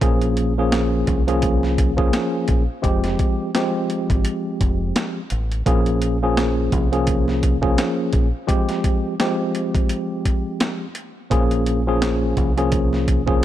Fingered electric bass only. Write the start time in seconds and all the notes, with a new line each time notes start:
0.02 A#1
1.08 C2
2.49 A#1
2.84 F1
4.10 G#1
4.61 F1
5.32 A1
5.67 A#1
6.73 C2
8.14 A#1
11.31 A#1
12.38 C2